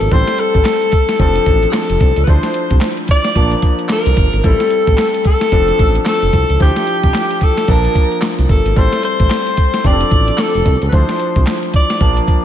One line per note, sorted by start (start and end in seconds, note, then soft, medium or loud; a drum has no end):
0.00 0.08 G#1 medium
0.00 0.14 F3 medium
0.00 0.13 A#3 medium
0.00 0.13 D4 medium
0.00 0.14 A4 loud
0.00 0.13 A5 medium
0.00 closed hi-hat medium
0.11 0.23 A1 loud
0.11 1.10 G3 medium
0.11 1.10 C4 medium
0.11 1.10 E4 medium
0.11 1.10 A4 medium
0.11 0.41 C5 loud
0.11 kick loud
0.11 closed hi-hat medium
0.28 snare medium
0.28 closed hi-hat medium
0.38 1.20 A4 loud
0.38 closed hi-hat medium
0.55 0.62 A1 medium
0.55 kick medium
0.55 closed hi-hat soft
0.65 snare loud
0.65 clap medium
0.65 closed hi-hat medium
0.82 closed hi-hat medium
0.92 kick loud
0.92 closed hi-hat medium
1.09 snare medium
1.09 closed hi-hat medium
1.19 1.38 F1 loud
1.19 2.18 F3 medium
1.19 2.18 C4 medium
1.19 2.18 D4 medium
1.19 2.18 A4 medium
1.19 1.66 A4 loud
1.19 kick medium
1.19 closed hi-hat medium
1.35 closed hi-hat soft
1.46 1.65 A1 medium
1.46 kick medium
1.46 closed hi-hat medium
1.63 closed hi-hat soft
1.70 1.77 G#4 medium
1.70 snare loud
1.70 clap medium
1.70 closed hi-hat medium
1.75 2.25 A4 medium
1.90 1.97 F1 medium
1.90 closed hi-hat medium
2.00 2.12 C2 loud
2.00 kick medium
2.00 closed hi-hat medium
2.16 2.24 C#2 medium
2.16 closed hi-hat medium
2.24 2.39 D2 loud
2.24 3.26 F3 medium
2.24 2.31 B4 medium
2.24 kick loud
2.24 closed hi-hat medium
2.28 3.26 D4 medium
2.28 3.26 E4 medium
2.28 3.27 C5 medium
2.28 2.83 C5 medium
2.43 snare medium
2.43 closed hi-hat medium
2.54 closed hi-hat medium
2.70 2.78 C2 medium
2.70 kick medium
2.70 closed hi-hat soft
2.81 snare loud
2.81 clap medium
2.81 closed hi-hat medium
2.97 closed hi-hat medium
3.08 3.60 D5 loud
3.08 kick medium
3.08 closed hi-hat medium
3.25 snare medium
3.25 closed hi-hat medium
3.35 3.55 A#1 loud
3.35 4.34 F3 medium
3.35 4.34 A#3 medium
3.35 4.35 D4 medium
3.35 4.35 A5 medium
3.35 kick medium
3.35 closed hi-hat medium
3.52 closed hi-hat soft
3.62 kick medium
3.62 closed hi-hat medium
3.79 closed hi-hat soft
3.89 4.48 A#4 loud
3.89 snare loud
3.89 clap loud
3.89 closed hi-hat medium
4.06 4.14 C2 medium
4.06 closed hi-hat medium
4.17 4.28 G1 loud
4.17 kick medium
4.17 closed hi-hat medium
4.33 4.41 G#1 medium
4.33 closed hi-hat medium
4.44 4.55 A1 loud
4.44 5.42 G3 medium
4.44 5.42 C4 medium
4.44 5.43 E4 medium
4.44 5.43 A4 medium
4.44 5.26 A4 loud
4.44 kick loud
4.44 closed hi-hat medium
4.60 snare medium
4.60 closed hi-hat medium
4.71 closed hi-hat medium
4.87 4.95 A1 medium
4.87 kick medium
4.87 closed hi-hat soft
4.98 snare loud
4.98 clap medium
4.98 closed hi-hat medium
5.14 closed hi-hat medium
5.25 6.03 A4 loud
5.25 kick loud
5.25 closed hi-hat medium
5.41 snare medium
5.41 closed hi-hat soft
5.52 5.71 F1 medium
5.52 6.50 F3 medium
5.52 6.51 C4 medium
5.52 6.51 D4 medium
5.52 6.51 A4 medium
5.52 kick medium
5.52 closed hi-hat medium
5.68 closed hi-hat soft
5.79 5.98 A1 loud
5.79 kick loud
5.79 closed hi-hat medium
5.95 closed hi-hat soft
6.06 6.57 A4 loud
6.06 snare loud
6.06 clap loud
6.06 closed hi-hat medium
6.22 6.30 F1 medium
6.22 closed hi-hat medium
6.33 6.45 C2 loud
6.33 kick medium
6.33 closed hi-hat medium
6.50 6.57 C#2 medium
6.50 closed hi-hat medium
6.60 6.72 D2 loud
6.60 7.58 F3 medium
6.60 7.58 D4 medium
6.60 7.59 E4 medium
6.60 7.45 G4 loud
6.60 7.59 C5 medium
6.60 kick loud
6.60 closed hi-hat medium
6.76 snare medium
6.76 closed hi-hat medium
6.87 closed hi-hat medium
7.04 7.11 C2 medium
7.04 kick medium
7.04 closed hi-hat soft
7.14 snare loud
7.14 clap medium
7.14 closed hi-hat medium
7.31 closed hi-hat medium
7.41 7.72 A4 medium
7.41 kick medium
7.41 closed hi-hat medium
7.58 snare medium
7.58 closed hi-hat medium
7.68 7.87 A#1 loud
7.68 8.67 F3 medium
7.68 8.67 A#3 medium
7.68 8.67 D4 medium
7.68 8.23 A#4 medium
7.68 8.67 A5 medium
7.68 kick medium
7.68 closed hi-hat medium
7.85 closed hi-hat soft
7.95 kick loud
7.95 closed hi-hat medium
8.12 closed hi-hat soft
8.22 snare loud
8.22 clap loud
8.22 closed hi-hat medium
8.39 8.46 C2 medium
8.39 closed hi-hat medium
8.49 8.61 G1 loud
8.49 8.79 A4 medium
8.49 kick medium
8.49 closed hi-hat medium
8.65 8.73 G#1 medium
8.65 closed hi-hat medium
8.76 8.88 A1 medium
8.76 9.75 G3 medium
8.76 9.75 C4 medium
8.76 9.75 E4 medium
8.76 9.75 A4 medium
8.76 9.04 C5 loud
8.76 kick loud
8.76 closed hi-hat medium
8.93 snare medium
8.93 closed hi-hat medium
9.03 9.88 C5 loud
9.03 closed hi-hat medium
9.20 9.27 A1 medium
9.20 kick medium
9.20 closed hi-hat soft
9.30 snare loud
9.30 clap medium
9.30 closed hi-hat medium
9.47 closed hi-hat medium
9.57 kick medium
9.57 closed hi-hat medium
9.74 snare medium
9.74 closed hi-hat medium
9.84 10.03 F1 medium
9.84 10.83 F3 medium
9.84 10.83 C4 medium
9.84 10.83 D4 medium
9.84 9.93 G4 medium
9.84 10.42 D5 loud
9.84 kick medium
9.84 closed hi-hat medium
9.92 10.87 A4 medium
10.01 closed hi-hat medium
10.11 10.30 A1 medium
10.11 kick medium
10.11 closed hi-hat medium
10.28 closed hi-hat soft
10.38 10.88 A4 medium
10.38 snare loud
10.38 clap medium
10.38 closed hi-hat medium
10.55 10.62 F1 medium
10.55 closed hi-hat medium
10.66 10.77 C2 loud
10.66 kick medium
10.66 closed hi-hat medium
10.82 10.89 C#2 medium
10.82 closed hi-hat medium
10.89 11.04 D2 medium
10.89 11.91 F3 medium
10.89 11.91 D4 medium
10.89 10.96 B4 medium
10.89 kick loud
10.89 closed hi-hat medium
10.93 11.91 E4 medium
10.93 11.92 C5 medium
10.93 11.48 C5 loud
11.09 snare medium
11.09 closed hi-hat medium
11.19 closed hi-hat medium
11.36 11.44 C2 medium
11.36 kick medium
11.36 closed hi-hat soft
11.47 snare loud
11.47 clap medium
11.47 closed hi-hat medium
11.63 closed hi-hat medium
11.74 12.25 D5 loud
11.74 kick loud
11.74 closed hi-hat medium
11.90 snare medium
11.90 closed hi-hat medium
12.01 12.20 A#1 loud
12.01 12.45 F3 medium
12.01 12.45 A#3 medium
12.01 12.45 D4 medium
12.01 12.45 A5 medium
12.01 kick medium
12.01 closed hi-hat medium
12.17 closed hi-hat soft
12.28 kick medium
12.28 closed hi-hat medium